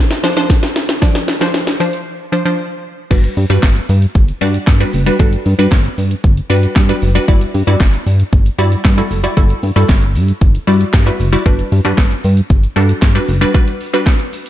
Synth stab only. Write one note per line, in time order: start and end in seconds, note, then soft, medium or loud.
0.00 0.15 F3 medium
0.00 0.15 D4 medium
0.00 0.16 C5 loud
0.23 0.35 F3 medium
0.23 0.35 D4 medium
0.23 0.35 C5 loud
0.36 0.91 F3 medium
0.36 0.92 D4 medium
0.36 0.92 C5 loud
1.02 1.35 F3 medium
1.02 1.35 D4 medium
1.02 1.35 D5 medium
1.41 1.74 F3 medium
1.41 1.74 D4 medium
1.41 1.74 C5 loud
1.80 2.24 F3 medium
1.80 2.24 D4 medium
1.80 2.24 C5 loud
2.32 2.43 F3 medium
2.32 2.43 D4 medium
2.32 2.44 C5 loud
2.45 3.00 F3 medium
2.45 3.00 D4 medium
2.45 3.00 C5 loud
3.11 3.44 G3 medium
3.11 3.44 D4 medium
3.11 3.44 F#4 medium
3.11 3.44 B4 medium
3.50 4.26 G3 medium
3.50 4.27 D4 medium
3.50 4.27 F#4 medium
3.50 4.27 B4 loud
4.41 4.74 G3 medium
4.41 4.74 D4 medium
4.41 4.74 F#4 medium
4.41 4.74 D5 loud
4.80 5.02 G3 medium
4.80 5.02 D4 medium
4.80 5.02 F#4 medium
4.80 5.03 B4 medium
5.06 5.17 G3 medium
5.06 5.17 D4 medium
5.06 5.18 F#4 medium
5.06 5.18 B4 loud
5.19 5.52 G3 medium
5.19 5.52 D4 medium
5.19 5.52 F#4 medium
5.19 5.53 A4 loud
5.59 6.35 G3 medium
5.59 6.35 D4 medium
5.59 6.35 F#4 medium
5.59 6.35 B4 loud
6.50 6.83 G3 medium
6.50 6.83 D4 medium
6.50 6.83 F#4 medium
6.50 6.83 B4 loud
6.89 7.11 G3 medium
6.89 7.11 D4 medium
6.89 7.11 F#4 medium
6.89 7.11 B4 loud
7.15 7.26 G3 medium
7.15 7.26 D4 medium
7.15 7.26 F#4 medium
7.15 7.26 B4 loud
7.28 7.61 G3 medium
7.28 7.61 E4 medium
7.28 7.61 F#4 medium
7.28 7.61 D5 loud
7.67 8.44 G3 medium
7.67 8.44 E4 medium
7.67 8.44 F#4 medium
7.67 8.44 D5 loud
8.59 8.91 G3 medium
8.59 8.92 E4 medium
8.59 8.92 F#4 medium
8.59 8.92 D5 loud
8.97 9.20 G3 medium
8.97 9.20 E4 medium
8.97 9.20 F#4 medium
8.97 9.20 A4 medium
9.24 9.35 G3 medium
9.24 9.35 E4 medium
9.24 9.35 F#4 medium
9.24 9.35 D5 loud
9.37 9.70 G3 medium
9.37 9.70 E4 medium
9.37 9.70 F#4 medium
9.37 9.70 A4 medium
9.76 10.53 G3 medium
9.76 10.53 E4 medium
9.76 10.53 F#4 medium
9.76 10.53 A4 loud
10.67 11.00 G3 medium
10.67 11.00 E4 medium
10.67 11.00 F#4 medium
10.67 11.00 D5 loud
11.06 11.28 G3 medium
11.06 11.28 E4 medium
11.06 11.28 F#4 medium
11.06 11.29 B4 medium
11.33 11.44 G3 medium
11.33 11.44 E4 medium
11.33 11.44 F#4 medium
11.33 11.44 D5 loud
11.46 11.78 G3 medium
11.46 11.79 D4 medium
11.46 11.79 F#4 medium
11.46 11.79 B4 medium
11.85 12.61 G3 medium
11.85 12.61 D4 medium
11.85 12.61 F#4 medium
11.85 12.61 B4 loud
12.76 13.09 G3 medium
12.76 13.09 D4 medium
12.76 13.09 F#4 medium
12.76 13.09 A4 loud
13.15 13.37 G3 medium
13.15 13.37 D4 medium
13.15 13.37 F#4 medium
13.15 13.37 B4 medium
13.41 13.52 G3 medium
13.41 13.52 D4 medium
13.41 13.52 F#4 medium
13.41 13.52 B4 loud
13.54 13.87 G3 medium
13.54 13.87 D4 medium
13.54 13.87 F#4 medium
13.54 13.87 B4 loud
13.93 14.50 G3 medium
13.93 14.50 D4 medium
13.93 14.50 F#4 medium
13.93 14.50 B4 loud